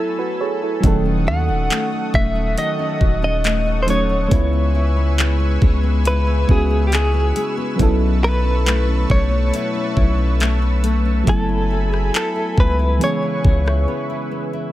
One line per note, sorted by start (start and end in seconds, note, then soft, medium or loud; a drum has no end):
0.00 0.78 F#3 medium
0.00 0.80 F#3 medium
0.00 0.81 A3 medium
0.00 0.80 B3 medium
0.00 0.18 E4 medium
0.00 0.18 A4 medium
0.00 4.27 A4 medium
0.00 0.80 G#5 medium
0.00 0.79 B5 medium
0.00 0.80 E6 medium
0.19 0.39 F#4 medium
0.19 0.39 B4 medium
0.41 0.61 G#4 medium
0.41 0.61 C#5 medium
0.62 1.04 E4 medium
0.62 0.86 A4 medium
0.80 1.28 D#1 loud
0.80 2.56 D#3 medium
0.80 3.82 F#3 medium
0.80 3.83 A3 medium
0.80 3.84 C#4 medium
0.80 1.26 F#4 medium
0.80 4.28 F#5 medium
0.80 7.75 C#6 medium
0.80 4.28 D#6 medium
0.80 kick loud
0.80 closed hi-hat medium
0.85 3.85 D#3 medium
0.85 3.86 A4 medium
1.05 1.48 C#4 medium
1.27 1.50 D#2 loud
1.27 2.57 F#4 medium
1.27 2.15 F#5 loud
1.49 1.70 D#1 loud
1.49 1.92 C#4 medium
1.71 2.13 A3 medium
1.71 clap loud
1.71 closed hi-hat medium
1.92 2.35 C#4 medium
2.14 2.56 D#1 loud
2.14 3.43 A3 medium
2.14 2.58 E5 loud
2.14 kick loud
2.36 2.79 C#4 medium
2.57 4.31 D#3 medium
2.57 3.00 F#4 medium
2.57 3.23 D#5 loud
2.57 closed hi-hat medium
2.79 3.22 C#4 medium
3.01 4.27 D#1 medium
3.01 4.31 F#4 medium
3.01 kick medium
3.22 3.66 C#4 medium
3.22 3.82 D#5 loud
3.44 3.86 A3 medium
3.44 clap loud
3.44 closed hi-hat medium
3.66 4.09 C#4 medium
3.83 4.30 F#3 medium
3.83 3.89 C5 medium
3.87 4.31 A3 medium
3.87 4.40 A3 medium
3.87 4.30 C#4 soft
3.87 4.32 D#4 soft
3.87 4.32 A4 medium
3.87 6.07 C#5 loud
3.87 closed hi-hat medium
4.10 4.53 C#4 medium
4.28 5.58 C#2 loud
4.28 6.04 C#3 medium
4.28 6.43 G#3 medium
4.28 6.44 B3 medium
4.28 6.45 C#4 medium
4.28 4.74 E4 medium
4.28 7.76 B4 medium
4.28 7.76 G#5 medium
4.28 14.71 E6 medium
4.28 kick loud
4.28 closed hi-hat medium
4.33 6.46 E4 medium
4.33 6.47 B4 medium
4.53 4.96 B3 medium
4.75 6.05 E4 medium
4.97 5.40 B3 medium
5.18 5.60 G#3 medium
5.18 clap loud
5.18 closed hi-hat medium
5.40 5.83 B3 medium
5.62 6.45 C#2 loud
5.62 6.91 G#3 medium
5.62 kick loud
5.83 6.27 B3 medium
6.05 7.88 C#3 medium
6.05 6.48 E4 medium
6.05 6.51 B4 medium
6.05 closed hi-hat medium
6.27 6.70 B3 medium
6.47 7.32 C#2 loud
6.47 7.78 G#3 medium
6.47 7.76 B3 medium
6.47 7.78 C#4 soft
6.47 7.79 E4 medium
6.47 7.80 E4 soft
6.47 7.80 F#4 medium
6.47 6.87 G#4 medium
6.47 kick medium
6.70 7.13 B3 medium
6.87 6.93 G4 medium
6.92 7.35 G#3 medium
6.92 7.55 G#4 medium
6.92 clap loud
6.92 closed hi-hat medium
7.14 7.57 B3 medium
7.36 7.88 G#3 medium
7.36 closed hi-hat medium
7.57 8.01 B3 medium
7.76 9.06 B1 loud
7.76 9.52 B2 medium
7.76 11.21 F#3 medium
7.76 11.22 B3 medium
7.76 11.23 C#4 medium
7.76 8.22 E4 medium
7.76 11.24 B4 medium
7.76 11.24 A5 medium
7.76 11.24 C#6 medium
7.76 kick loud
7.76 closed hi-hat medium
7.81 11.24 E4 medium
7.81 11.25 A4 medium
8.01 8.44 C#4 medium
8.23 9.54 E4 medium
8.23 9.11 B4 loud
8.45 8.88 C#4 medium
8.66 9.09 A3 medium
8.66 clap loud
8.66 closed hi-hat medium
8.88 9.31 C#4 medium
9.10 9.52 B1 loud
9.10 10.40 A3 medium
9.10 10.80 C#5 loud
9.10 kick loud
9.32 9.75 C#4 medium
9.53 11.36 B2 medium
9.53 9.96 E4 medium
9.53 closed hi-hat medium
9.75 10.18 C#4 medium
9.97 11.23 B1 loud
9.97 11.48 E4 medium
9.97 kick medium
10.18 10.62 C#4 medium
10.40 10.83 A3 medium
10.40 clap loud
10.40 closed hi-hat medium
10.62 11.05 C#4 medium
10.84 11.27 A3 medium
10.84 closed hi-hat medium
11.05 12.14 C#4 medium
11.24 12.11 F#1 loud
11.24 12.96 F#3 medium
11.24 13.10 F#3 medium
11.24 12.97 A3 medium
11.24 12.98 B3 medium
11.24 12.99 A4 medium
11.24 14.72 G#5 medium
11.24 12.99 B5 medium
11.24 kick loud
11.24 closed hi-hat medium
11.28 12.98 E4 medium
11.28 11.69 A4 medium
11.28 11.89 A4 medium
11.28 12.99 G#5 medium
11.49 11.92 E4 medium
11.71 13.01 A4 medium
11.89 12.35 E4 medium
11.89 12.15 G#4 medium
11.94 cross-stick medium
12.14 12.57 B3 medium
12.14 12.60 A4 medium
12.14 clap loud
12.14 closed hi-hat medium
12.36 12.78 E4 medium
12.57 12.99 C#2 loud
12.57 13.10 B3 medium
12.57 13.03 B4 medium
12.57 kick loud
12.79 13.10 E4 medium
12.98 14.72 C#3 medium
12.98 14.70 E3 medium
12.98 14.71 G#3 medium
12.98 14.72 B3 medium
12.98 13.43 G#4 medium
12.98 14.72 B4 medium
12.98 14.72 C#6 medium
12.98 closed hi-hat medium
13.03 14.72 C#4 medium
13.03 14.72 G#4 medium
13.03 14.29 C#5 medium
13.22 13.65 E4 medium
13.44 13.86 C#2 loud
13.44 14.72 G#4 medium
13.44 kick medium
13.66 14.09 E4 medium
13.66 cross-stick loud
13.88 14.30 B3 medium
14.10 14.52 E4 medium
14.31 14.72 B3 medium
14.53 14.72 E4 medium